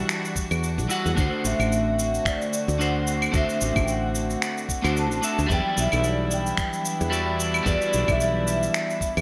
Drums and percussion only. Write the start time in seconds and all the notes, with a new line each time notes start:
0.09 finger snap, cabasa
0.25 cabasa
0.36 kick, cabasa
0.51 cabasa, claves
0.64 cabasa
0.79 cabasa
0.90 cabasa
1.06 cabasa
1.17 kick, cabasa
1.45 cabasa
1.60 cabasa, claves
1.72 cabasa
1.99 cabasa
2.15 cabasa
2.25 finger snap, kick, cabasa
2.42 cabasa
2.53 cabasa
2.69 cabasa
2.81 cabasa
3.07 cabasa
3.22 cabasa, claves
3.34 kick, cabasa
3.49 cabasa
3.61 cabasa
3.76 kick, cabasa, claves
3.88 cabasa
4.15 cabasa
4.30 cabasa
4.42 finger snap, cabasa
4.58 cabasa
4.69 kick, cabasa
4.84 cabasa, claves
4.97 cabasa
5.12 cabasa
5.23 cabasa
5.39 cabasa
5.50 kick, cabasa
5.78 cabasa
5.92 cabasa, claves
6.04 cabasa
6.31 cabasa
6.46 cabasa
6.57 finger snap, kick, cabasa
6.73 cabasa
6.85 cabasa
7.01 cabasa
7.13 cabasa
7.40 cabasa
7.54 cabasa, claves
7.66 kick, cabasa
7.82 cabasa
7.93 cabasa
8.08 kick, cabasa, claves
8.20 cabasa
8.48 cabasa
8.63 cabasa
8.74 finger snap, cabasa
8.90 cabasa
9.01 kick, cabasa
9.17 cabasa, claves